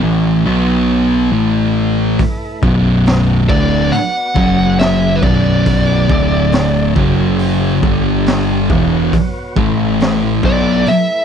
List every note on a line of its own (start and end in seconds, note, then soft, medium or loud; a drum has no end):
0.02 0.43 A1 medium
0.02 0.44 A2 medium
0.02 0.44 E3 medium
0.02 0.45 A3 loud
0.46 1.29 B1 medium
0.46 1.31 B2 medium
0.46 1.31 F#3 medium
0.46 1.31 B3 loud
1.32 2.15 A1 medium
1.32 2.17 A2 medium
1.32 2.17 E3 medium
1.32 2.18 A3 loud
2.19 2.62 A3 medium
2.19 2.62 E4 medium
2.19 2.63 B4 medium
2.19 kick medium
2.19 open hi-hat medium
2.62 3.45 B0 medium
2.62 3.48 B1 medium
2.62 3.48 F#2 medium
2.62 3.48 B2 loud
2.62 4.36 B3 medium
2.62 4.36 F#4 medium
2.62 4.36 D5 medium
2.62 kick loud
3.06 snare loud
3.06 open hi-hat medium
3.49 3.90 D1 medium
3.49 3.91 D2 medium
3.49 3.92 A2 loud
3.49 3.92 D3 medium
3.49 3.94 D5 medium
3.49 kick loud
3.92 4.79 F#5 loud
3.92 muted distorted electric guitar stroke medium
3.92 muted picked electric bass stroke soft
3.92 open hi-hat medium
4.35 5.19 F#1 medium
4.35 5.21 F#2 medium
4.35 5.21 C#3 loud
4.35 5.21 F#3 loud
4.35 5.23 F#3 medium
4.35 5.22 C#4 medium
4.35 5.22 G#4 medium
4.35 kick loud
4.79 5.17 E5 loud
4.79 snare loud
4.79 open hi-hat medium
5.16 5.23 B4 medium
5.22 6.06 B0 loud
5.22 6.08 B1 medium
5.22 6.08 F#2 medium
5.22 6.09 B2 loud
5.22 6.10 B3 medium
5.22 6.09 F#4 medium
5.22 6.93 D5 medium
5.22 6.10 D5 medium
5.22 kick loud
5.66 kick loud
5.66 open hi-hat medium
6.09 6.93 D1 loud
6.09 6.95 D2 medium
6.09 6.95 A2 medium
6.09 6.95 D3 medium
6.09 6.96 D4 medium
6.09 6.96 A4 medium
6.09 6.96 E5 medium
6.09 kick loud
6.52 snare loud
6.52 open hi-hat medium
6.96 7.79 F#1 medium
6.96 7.82 F#2 medium
6.96 7.82 C#3 medium
6.96 7.82 F#3 medium
6.96 7.83 F#3 medium
6.96 7.84 C#4 medium
6.96 7.83 G#4 medium
6.96 kick loud
7.39 open hi-hat medium
7.83 8.66 G1 medium
7.83 8.69 G2 medium
7.83 8.69 D3 medium
7.83 8.69 G3 loud
7.83 8.70 G3 medium
7.83 8.70 D4 medium
7.83 8.70 A4 medium
7.83 kick loud
8.26 snare loud
8.26 open hi-hat medium
8.70 9.11 E1 loud
8.70 9.12 E2 medium
8.70 9.12 B2 loud
8.70 9.13 E3 loud
8.70 9.57 B3 medium
8.70 9.56 F#4 medium
8.70 9.57 C#5 medium
8.70 kick loud
9.13 kick loud
9.13 open hi-hat medium
9.56 10.39 A1 medium
9.56 10.42 A2 medium
9.56 10.43 E3 medium
9.56 10.43 A3 loud
9.56 11.25 A3 medium
9.56 11.25 E4 medium
9.56 11.25 B4 medium
9.56 kick loud
10.00 snare loud
10.00 open hi-hat medium
10.43 10.84 B1 medium
10.43 10.86 B2 medium
10.43 10.86 F#3 medium
10.43 10.86 B3 medium
10.43 10.89 D5 medium
10.43 kick loud
10.86 11.25 E5 loud
10.86 muted distorted electric guitar stroke medium
10.86 muted picked electric bass stroke soft
10.86 open hi-hat medium